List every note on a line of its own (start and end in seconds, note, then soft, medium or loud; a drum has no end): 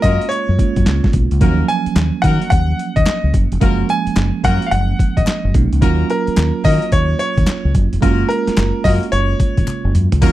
0.00 0.17 F#2 medium
0.00 0.56 G#3 medium
0.00 0.56 A#3 medium
0.00 0.56 C#4 medium
0.00 0.25 C#4 medium
0.00 0.57 F4 medium
0.00 0.25 F4 medium
0.00 0.29 D#5 loud
0.00 kick medium
0.00 closed hi-hat medium
0.04 0.25 A#3 medium
0.04 0.25 F#4 medium
0.04 0.25 A#4 medium
0.21 closed hi-hat medium
0.29 1.09 C#5 medium
0.29 closed hi-hat medium
0.49 0.56 F#2 medium
0.58 1.41 G#3 medium
0.58 1.40 A#3 soft
0.58 1.41 C#4 soft
0.58 1.42 F4 medium
0.58 kick medium
0.58 closed hi-hat medium
0.76 0.84 F#2 loud
0.76 kick medium
0.76 closed hi-hat soft
0.86 1.00 C#2 medium
0.86 snare loud
0.86 clap medium
0.86 closed hi-hat medium
1.04 kick medium
1.04 snare medium
1.13 1.27 B1 medium
1.13 kick medium
1.13 closed hi-hat medium
1.31 1.39 C#2 medium
1.31 closed hi-hat medium
1.41 1.62 D#2 loud
1.41 3.58 F3 medium
1.41 3.57 F#3 medium
1.41 3.58 A#3 medium
1.41 1.67 A#3 medium
1.41 1.67 C#4 medium
1.41 3.58 C#4 medium
1.41 1.67 D#4 medium
1.41 1.67 F#4 medium
1.41 1.67 A#4 loud
1.41 kick loud
1.41 closed hi-hat medium
1.68 2.25 G#5 loud
1.68 closed hi-hat medium
1.86 muted fingered electric bass stroke soft
1.86 closed hi-hat soft
1.96 2.10 D#2 medium
1.96 snare loud
1.96 clap medium
1.96 closed hi-hat medium
2.22 2.37 D#3 loud
2.22 2.45 A#3 medium
2.22 2.45 C#4 medium
2.22 2.45 D#4 medium
2.22 2.45 F#4 medium
2.22 2.45 A#4 medium
2.22 2.49 F#5 medium
2.22 kick medium
2.22 closed hi-hat medium
2.42 closed hi-hat medium
2.50 2.72 D#2 medium
2.50 2.97 F#5 loud
2.50 kick loud
2.50 closed hi-hat medium
2.79 closed hi-hat medium
2.96 3.04 D#2 medium
2.96 3.31 D#5 medium
2.96 kick medium
2.96 closed hi-hat soft
3.06 snare loud
3.06 clap medium
3.06 closed hi-hat medium
3.24 3.31 C#2 medium
3.34 3.47 F#1 medium
3.34 kick loud
3.34 closed hi-hat medium
3.52 3.59 F1 medium
3.52 closed hi-hat medium
3.61 3.82 F#1 medium
3.61 5.51 F3 medium
3.61 5.50 G#3 medium
3.61 5.50 A#3 medium
3.61 3.88 A#3 medium
3.61 3.87 C#4 medium
3.61 5.51 C#4 medium
3.61 3.87 F4 medium
3.61 3.87 F#4 medium
3.61 3.88 A#4 loud
3.61 kick loud
3.61 closed hi-hat medium
3.89 4.41 G#5 loud
3.89 closed hi-hat medium
4.07 muted fingered electric bass stroke soft
4.07 closed hi-hat medium
4.16 4.30 F#1 medium
4.16 snare loud
4.16 clap medium
4.16 closed hi-hat medium
4.43 4.57 F#2 loud
4.43 4.65 A#3 medium
4.43 4.65 C#4 medium
4.43 4.65 F4 medium
4.43 4.65 F#4 medium
4.43 4.65 A#4 medium
4.43 4.68 F#5 medium
4.43 kick medium
4.43 closed hi-hat medium
4.62 closed hi-hat soft
4.67 4.72 F5 medium
4.71 4.93 F#1 loud
4.71 5.18 F#5 loud
4.71 closed hi-hat medium
4.99 kick medium
4.99 closed hi-hat medium
5.17 5.25 G#1 medium
5.17 5.52 D#5 medium
5.17 kick medium
5.17 closed hi-hat soft
5.27 snare loud
5.27 clap medium
5.27 closed hi-hat medium
5.28 clap medium
5.45 5.52 F#1 medium
5.54 5.68 B1 medium
5.54 5.82 G#3 soft
5.54 5.81 A#3 soft
5.54 5.81 C#4 soft
5.54 5.82 D#4 medium
5.54 kick loud
5.54 closed hi-hat medium
5.72 5.80 C#2 medium
5.72 closed hi-hat medium
5.81 6.03 D#2 medium
5.81 7.98 F#3 medium
5.81 7.98 A#3 medium
5.81 6.08 A#3 medium
5.81 6.08 C#4 medium
5.81 7.98 C#4 medium
5.81 6.08 D#4 medium
5.81 7.99 F4 medium
5.81 6.08 F#4 medium
5.81 6.08 A#4 loud
5.81 kick loud
5.81 closed hi-hat medium
6.10 6.61 A#4 medium
6.10 closed hi-hat medium
6.27 muted fingered electric bass stroke soft
6.27 closed hi-hat soft
6.37 6.51 D#2 medium
6.37 snare loud
6.37 clap medium
6.37 clap loud
6.37 closed hi-hat medium
6.64 6.78 D#3 loud
6.64 6.85 A#3 medium
6.64 6.85 C#4 medium
6.64 6.85 D#4 medium
6.64 6.85 F#4 medium
6.64 6.85 A#4 medium
6.64 6.90 D#5 loud
6.64 kick medium
6.64 open hi-hat medium
6.82 closed hi-hat medium
6.92 7.13 D#2 loud
6.92 7.18 C#5 loud
6.92 kick medium
6.92 closed hi-hat medium
7.19 7.71 C#5 loud
7.19 closed hi-hat medium
7.37 7.45 D#2 medium
7.37 kick medium
7.37 closed hi-hat soft
7.47 snare loud
7.47 clap medium
7.47 closed hi-hat medium
7.65 7.72 C#2 medium
7.75 7.88 F#1 loud
7.75 kick loud
7.75 closed hi-hat medium
7.92 8.00 F1 medium
7.92 closed hi-hat medium
8.01 8.23 F#1 loud
8.01 10.18 G#3 medium
8.01 10.18 A#3 medium
8.01 8.28 A#3 medium
8.01 8.28 C#4 medium
8.01 10.19 C#4 medium
8.01 8.28 F4 medium
8.01 10.19 F4 medium
8.01 8.28 F#4 medium
8.01 8.28 A#4 loud
8.01 kick loud
8.01 closed hi-hat medium
8.29 8.86 A#4 medium
8.29 closed hi-hat medium
8.47 muted fingered electric bass stroke soft
8.47 snare medium
8.47 closed hi-hat medium
8.57 8.71 F#1 medium
8.57 snare loud
8.57 clap medium
8.57 clap loud
8.57 closed hi-hat medium
8.84 8.98 F#2 medium
8.84 9.06 A#3 medium
8.84 9.05 C#4 medium
8.84 9.06 F4 medium
8.84 9.06 F#4 medium
8.84 9.06 A#4 medium
8.84 8.90 D#5 loud
8.84 kick medium
8.84 open hi-hat medium
9.03 closed hi-hat medium
9.12 9.33 F#1 medium
9.12 9.91 C#5 medium
9.12 closed hi-hat medium
9.40 kick medium
9.40 closed hi-hat medium
9.57 9.65 G#1 medium
9.57 kick medium
9.57 closed hi-hat soft
9.67 clap medium
9.67 closed hi-hat medium
9.67 high tom medium
9.85 9.92 F#1 medium
9.95 10.08 F#2 medium
9.95 closed hi-hat medium
9.95 mid tom medium
10.12 10.20 C#2 medium
10.12 closed hi-hat medium
10.12 floor tom medium
10.22 10.32 D#2 loud
10.22 10.32 F#3 medium
10.22 10.32 A#3 medium
10.22 10.32 C#4 medium
10.22 10.32 D#4 medium
10.22 10.32 F4 medium
10.22 10.32 F#4 medium
10.22 10.32 A#4 loud
10.22 kick loud
10.22 closed hi-hat medium
10.22 crash loud
10.22 tambourine medium